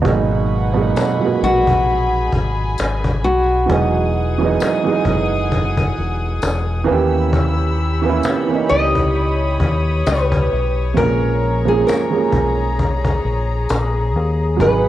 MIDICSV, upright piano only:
0, 0, Header, 1, 2, 480
1, 0, Start_track
1, 0, Key_signature, 5, "minor"
1, 0, Tempo, 909091
1, 29, Time_signature, 4, 2, 24, 8
1, 7859, End_track
2, 0, Start_track
2, 0, Title_t, "Upright piano"
2, 0, Program_c, 0, 0
2, 0, Control_c, 0, 64, 127
2, 10, Note_on_c, 0, 47, 82
2, 19, Note_on_c, 0, 54, 79
2, 29, Note_on_c, 0, 56, 77
2, 36, Control_c, 0, 64, 0
2, 41, Note_on_c, 0, 58, 74
2, 49, Note_on_c, 0, 63, 85
2, 141, Control_c, 0, 64, 127
2, 366, Note_off_c, 0, 47, 0
2, 371, Note_off_c, 0, 54, 0
2, 376, Note_off_c, 0, 56, 0
2, 382, Note_off_c, 0, 58, 0
2, 386, Note_off_c, 0, 63, 0
2, 389, Note_on_c, 0, 47, 76
2, 400, Note_on_c, 0, 54, 70
2, 406, Note_on_c, 0, 56, 77
2, 417, Note_on_c, 0, 58, 71
2, 430, Note_on_c, 0, 63, 86
2, 617, Note_off_c, 0, 47, 0
2, 623, Note_off_c, 0, 54, 0
2, 625, Note_on_c, 0, 46, 51
2, 626, Note_off_c, 0, 56, 0
2, 632, Note_off_c, 0, 58, 0
2, 634, Note_on_c, 0, 54, 56
2, 638, Note_off_c, 0, 63, 0
2, 644, Note_on_c, 0, 56, 61
2, 654, Note_on_c, 0, 58, 62
2, 660, Note_on_c, 0, 59, 64
2, 665, Note_off_c, 0, 46, 0
2, 665, Note_on_c, 0, 66, 74
2, 1520, Note_off_c, 0, 54, 0
2, 1525, Note_off_c, 0, 56, 0
2, 1530, Note_off_c, 0, 58, 0
2, 1533, Note_off_c, 0, 59, 0
2, 1536, Note_off_c, 0, 66, 0
2, 1931, Note_on_c, 0, 52, 72
2, 1943, Note_on_c, 0, 54, 61
2, 1951, Note_on_c, 0, 56, 62
2, 1955, Control_c, 0, 64, 0
2, 1960, Note_on_c, 0, 59, 64
2, 1972, Note_on_c, 0, 63, 76
2, 2048, Control_c, 0, 64, 127
2, 2287, Note_off_c, 0, 52, 0
2, 2293, Note_off_c, 0, 54, 0
2, 2297, Note_off_c, 0, 56, 0
2, 2301, Note_off_c, 0, 59, 0
2, 2307, Note_off_c, 0, 63, 0
2, 2312, Note_on_c, 0, 52, 83
2, 2322, Note_on_c, 0, 54, 71
2, 2332, Note_on_c, 0, 56, 76
2, 2341, Note_on_c, 0, 59, 69
2, 2350, Note_on_c, 0, 63, 93
2, 2539, Note_off_c, 0, 52, 0
2, 2544, Note_off_c, 0, 54, 0
2, 2549, Note_off_c, 0, 56, 0
2, 2552, Note_on_c, 0, 52, 77
2, 2554, Note_off_c, 0, 59, 0
2, 2558, Note_off_c, 0, 63, 0
2, 2562, Note_on_c, 0, 54, 75
2, 2571, Note_on_c, 0, 56, 74
2, 2580, Note_on_c, 0, 59, 65
2, 2593, Note_on_c, 0, 63, 90
2, 3439, Note_off_c, 0, 52, 0
2, 3444, Note_off_c, 0, 54, 0
2, 3449, Note_off_c, 0, 56, 0
2, 3453, Note_off_c, 0, 59, 0
2, 3460, Note_off_c, 0, 63, 0
2, 3613, Note_on_c, 0, 52, 96
2, 3622, Note_on_c, 0, 58, 89
2, 3631, Note_on_c, 0, 59, 87
2, 3636, Control_c, 0, 64, 0
2, 3642, Note_on_c, 0, 61, 83
2, 3653, Note_on_c, 0, 67, 102
2, 3718, Control_c, 0, 64, 127
2, 4188, Note_off_c, 0, 52, 0
2, 4193, Note_off_c, 0, 58, 0
2, 4197, Note_off_c, 0, 59, 0
2, 4203, Note_off_c, 0, 61, 0
2, 4208, Note_off_c, 0, 67, 0
2, 4234, Note_on_c, 0, 52, 78
2, 4243, Note_on_c, 0, 58, 75
2, 4252, Note_on_c, 0, 59, 81
2, 4265, Note_on_c, 0, 61, 70
2, 4274, Note_on_c, 0, 64, 96
2, 4460, Note_off_c, 0, 52, 0
2, 4465, Note_off_c, 0, 58, 0
2, 4469, Note_off_c, 0, 59, 0
2, 4472, Note_on_c, 0, 52, 67
2, 4476, Note_off_c, 0, 61, 0
2, 4480, Note_off_c, 0, 64, 0
2, 4484, Note_on_c, 0, 58, 59
2, 4492, Note_on_c, 0, 59, 60
2, 4503, Note_on_c, 0, 61, 56
2, 4514, Note_on_c, 0, 63, 70
2, 5359, Note_off_c, 0, 52, 0
2, 5365, Note_off_c, 0, 58, 0
2, 5369, Note_off_c, 0, 59, 0
2, 5375, Note_off_c, 0, 61, 0
2, 5380, Note_off_c, 0, 63, 0
2, 5776, Note_on_c, 0, 53, 63
2, 5787, Note_on_c, 0, 56, 64
2, 5797, Control_c, 0, 64, 0
2, 5797, Note_on_c, 0, 58, 68
2, 5806, Note_on_c, 0, 61, 61
2, 5817, Note_on_c, 0, 68, 77
2, 5881, Control_c, 0, 64, 127
2, 6130, Note_off_c, 0, 53, 0
2, 6135, Note_off_c, 0, 56, 0
2, 6140, Note_off_c, 0, 58, 0
2, 6144, Note_off_c, 0, 61, 0
2, 6150, Note_off_c, 0, 68, 0
2, 6153, Note_on_c, 0, 53, 72
2, 6160, Note_on_c, 0, 56, 67
2, 6170, Note_on_c, 0, 58, 68
2, 6182, Note_on_c, 0, 61, 62
2, 6191, Note_on_c, 0, 68, 76
2, 6379, Note_off_c, 0, 53, 0
2, 6383, Note_off_c, 0, 56, 0
2, 6388, Note_off_c, 0, 58, 0
2, 6392, Note_on_c, 0, 53, 66
2, 6394, Note_off_c, 0, 61, 0
2, 6398, Note_off_c, 0, 68, 0
2, 6401, Note_on_c, 0, 56, 62
2, 6414, Note_on_c, 0, 58, 56
2, 6419, Note_on_c, 0, 61, 56
2, 6431, Note_on_c, 0, 68, 66
2, 7279, Note_off_c, 0, 53, 0
2, 7283, Note_off_c, 0, 56, 0
2, 7290, Note_off_c, 0, 58, 0
2, 7293, Note_off_c, 0, 61, 0
2, 7298, Note_off_c, 0, 68, 0
2, 7692, Note_on_c, 0, 54, 68
2, 7702, Note_on_c, 0, 56, 63
2, 7713, Note_on_c, 0, 59, 65
2, 7715, Control_c, 0, 64, 0
2, 7721, Note_on_c, 0, 63, 62
2, 7732, Note_on_c, 0, 68, 75
2, 7821, Control_c, 0, 64, 127
2, 7859, Note_off_c, 0, 54, 0
2, 7859, Note_off_c, 0, 56, 0
2, 7859, Note_off_c, 0, 59, 0
2, 7859, Note_off_c, 0, 63, 0
2, 7859, Note_off_c, 0, 68, 0
2, 7859, End_track
0, 0, End_of_file